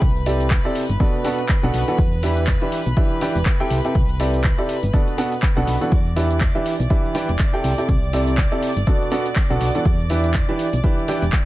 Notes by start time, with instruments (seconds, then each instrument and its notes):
Already playing: violin section B4 B5
0.02 fm bass C2, kick, closed hi-hat, shaker
0.16 shaker
0.26 grand piano C3 C4 E4 G4 A4 D5, open hi-hat
0.40 closed hi-hat, shaker
0.50 kick, clap, closed hi-hat, shaker
0.65 grand piano C3 C4 E4 G4 A4 D5, closed hi-hat, shaker
0.75 open hi-hat
0.89 fm bass G1, closed hi-hat, shaker
1.00 grand piano B2 B3 D4 F#4 A4 D5, kick, closed hi-hat, shaker
1.15 shaker
1.25 grand piano B2 B3 D4 F#4 A4 F#5, open hi-hat
1.39 closed hi-hat, shaker
1.49 kick, clap, closed hi-hat, shaker
1.63 fm bass B1, grand piano B2 B3 D4 F#4 A4 F#5, shaker
1.74 fm bass B1, open hi-hat
1.88 grand piano E3 B3 D4 F#4 A4 F#5, closed hi-hat, shaker
1.98 fm bass E2, kick, closed hi-hat, shaker
2.13 shaker
2.23 grand piano E3 D4 E4 G4 B4 E5, open hi-hat
2.37 closed hi-hat, shaker
2.47 kick, clap, closed hi-hat, shaker
2.62 grand piano E3 D4 E4 G4 B4 E5, closed hi-hat, shaker
2.72 open hi-hat
2.86 fm bass B1, closed hi-hat, shaker
2.97 grand piano E3 D4 E4 G4 B4 E5, kick, closed hi-hat, shaker
3.12 shaker
3.21 grand piano E3 D4 E4 G4 B4 G5, open hi-hat
3.35 fm bass E1, closed hi-hat, shaker
3.46 kick, clap, closed hi-hat, shaker
3.60 grand piano C3 C4 E4 G4 A4 G5, shaker
3.70 fm bass C2, open hi-hat
3.85 grand piano C3 C4 E4 G4 A4 G5, closed hi-hat, shaker
3.95 fm bass C2, kick, closed hi-hat, shaker
4.09 closed hi-hat, shaker
4.20 grand piano C3 C4 E4 G4 A4 D5, open hi-hat
4.34 closed hi-hat, shaker
4.44 kick, clap, closed hi-hat, shaker
4.58 grand piano C3 C4 E4 G4 A4 D5, closed hi-hat, shaker
4.69 open hi-hat
4.83 fm bass G1, closed hi-hat, shaker
4.93 grand piano B2 B3 D4 F#4 A4 D5, kick, closed hi-hat, shaker
5.08 closed hi-hat, shaker
5.18 grand piano B2 B3 D4 F#4 A4 F#5, open hi-hat
5.32 closed hi-hat, shaker
5.42 kick, clap, closed hi-hat, shaker
5.57 fm bass B1, grand piano B2 B3 D4 F#4 A4 F#5, closed hi-hat, shaker
5.67 fm bass B1, open hi-hat
5.81 grand piano E3 B3 D4 F#4 A4 F#5, closed hi-hat, shaker
5.92 fm bass E2, violin section D5 D6, kick, closed hi-hat, shaker
6.07 shaker
6.16 grand piano E3 D4 E4 G4 B4 E5, open hi-hat
6.31 closed hi-hat, shaker
6.41 kick, clap, closed hi-hat, shaker
6.55 grand piano E3 D4 E4 G4 B4 E5, closed hi-hat, shaker
6.66 open hi-hat
6.80 fm bass B1, closed hi-hat, shaker
6.90 grand piano E3 D4 E4 G4 B4 E5, kick, closed hi-hat, shaker
7.05 shaker
7.15 grand piano E3 D4 E4 G4 B4 G5, open hi-hat
7.29 fm bass E1, closed hi-hat, shaker
7.39 kick, clap, closed hi-hat, shaker
7.53 grand piano C3 C4 E4 G4 A4 G5, shaker
7.64 fm bass C2, open hi-hat
7.78 grand piano C3 C4 E4 G4 A4 G5, closed hi-hat, shaker
7.89 fm bass C2, kick, closed hi-hat, shaker
8.03 shaker
8.13 grand piano C3 C4 E4 G4 A4 D5, open hi-hat
8.27 closed hi-hat, shaker
8.37 kick, clap, closed hi-hat, shaker
8.52 grand piano C3 C4 E4 G4 A4 D5, closed hi-hat, shaker
8.63 open hi-hat
8.76 fm bass G1, closed hi-hat, shaker
8.87 grand piano B2 B3 D4 F#4 A4 D5, kick, closed hi-hat, shaker
9.02 shaker
9.12 grand piano B2 B3 D4 F#4 A4 F#5, open hi-hat
9.26 closed hi-hat, shaker
9.36 kick, clap, closed hi-hat, shaker
9.50 fm bass B1, grand piano B2 B3 D4 F#4 A4 F#5, shaker
9.61 fm bass B1, open hi-hat
9.75 grand piano E3 B3 D4 F#4 A4 F#5, closed hi-hat, shaker
9.85 fm bass E2, kick, closed hi-hat, shaker
10.00 shaker
10.10 grand piano E3 D4 E4 G4 B4 E5, open hi-hat
10.24 closed hi-hat, shaker
10.34 kick, clap, closed hi-hat, shaker
10.49 grand piano E3 D4 E4 G4 B4 E5, closed hi-hat, shaker
10.59 open hi-hat
10.73 fm bass B1, closed hi-hat, shaker
10.84 grand piano E3 D4 E4 G4 B4 E5, kick, closed hi-hat, shaker
10.98 shaker
11.08 grand piano E3 D4 E4 G4 B4 G5, open hi-hat
11.22 fm bass E1, closed hi-hat, shaker
11.32 kick, clap, closed hi-hat, shaker